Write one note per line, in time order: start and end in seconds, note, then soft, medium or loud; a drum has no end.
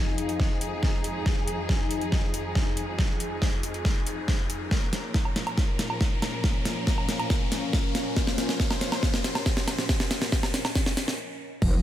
0.00 4.67 F2 medium
0.00 4.67 F3 medium
0.00 4.67 D#4 medium
0.00 6.12 D#4 medium
0.00 4.67 G#4 medium
0.00 5.86 G#4 medium
0.00 4.71 F5 medium
0.00 riser medium
0.18 closed hi-hat medium
0.29 closed hi-hat soft
0.40 kick medium
0.40 snare medium
0.61 closed hi-hat medium
0.83 kick medium
0.83 snare medium
1.04 closed hi-hat medium
1.26 kick medium
1.26 snare medium
1.48 closed hi-hat medium
1.69 kick medium
1.69 snare medium
1.91 closed hi-hat medium
2.01 closed hi-hat soft
2.12 kick loud
2.12 snare medium
2.34 closed hi-hat medium
2.55 kick medium
2.55 snare medium
2.77 closed hi-hat medium
2.99 kick medium
2.99 snare medium
3.20 closed hi-hat medium
3.42 kick medium
3.42 snare medium
3.63 closed hi-hat medium
3.74 closed hi-hat soft
3.85 kick loud
3.85 snare medium
4.07 closed hi-hat medium
4.28 kick medium
4.28 snare medium
4.50 closed hi-hat medium
4.71 11.15 A#2 medium
4.71 11.15 F3 medium
4.71 11.15 C#4 medium
4.71 11.19 C#4 medium
4.71 8.13 A#4 medium
4.71 kick medium
4.71 snare medium
4.93 snare medium
4.93 closed hi-hat medium
5.14 kick medium
5.14 snare medium
5.25 low woodblock medium
5.30 11.19 A#4 medium
5.36 snare medium
5.36 closed hi-hat medium
5.47 closed hi-hat soft
5.47 low woodblock medium
5.58 kick loud
5.58 snare medium
5.79 snare medium
5.79 closed hi-hat medium
5.90 low woodblock medium
6.01 kick medium
6.01 snare medium
6.22 9.42 F5 medium
6.22 snare medium
6.22 closed hi-hat medium
6.22 low woodblock medium
6.44 kick loud
6.44 snare medium
6.65 snare medium
6.65 closed hi-hat medium
6.87 kick medium
6.87 snare medium
6.98 low woodblock medium
7.09 snare medium
7.09 closed hi-hat medium
7.19 closed hi-hat soft
7.19 low woodblock medium
7.30 kick loud
7.30 snare medium
7.52 snare medium
7.52 closed hi-hat medium
7.73 kick medium
7.73 snare medium
7.95 snare medium
7.95 closed hi-hat medium
8.17 11.16 C5 medium
8.17 kick medium
8.17 snare medium
8.27 snare medium
8.38 snare medium
8.38 closed hi-hat medium
8.49 snare medium
8.60 kick loud
8.60 snare loud
8.71 snare medium
8.71 low woodblock medium
8.81 snare loud
8.81 closed hi-hat medium
8.92 snare medium
8.92 closed hi-hat soft
8.92 low woodblock medium
9.03 kick loud
9.03 snare loud
9.14 snare medium
9.24 snare loud
9.24 closed hi-hat medium
9.29 11.19 D#5 medium
9.35 snare medium
9.35 low woodblock medium
9.46 kick medium
9.46 snare loud
9.57 snare medium
9.68 snare loud
9.68 closed hi-hat medium
9.68 low woodblock medium
9.79 snare medium
9.89 kick loud
9.89 snare loud
10.00 snare medium
10.11 snare loud
10.11 closed hi-hat medium
10.22 snare loud
10.32 kick loud
10.32 snare loud
10.43 snare medium
10.43 low woodblock medium
10.54 snare loud
10.54 closed hi-hat medium
10.65 snare loud
10.65 closed hi-hat soft
10.65 low woodblock medium
10.75 kick loud
10.75 snare loud
10.86 snare loud
10.97 snare loud
10.97 closed hi-hat medium
11.08 snare loud
11.62 11.82 F1 loud
11.62 11.82 F3 medium
11.62 11.82 D#4 medium
11.62 11.82 F4 medium
11.62 11.82 G#4 medium
11.62 11.82 D#5 loud
11.62 kick loud
11.62 crash loud
11.62 impact medium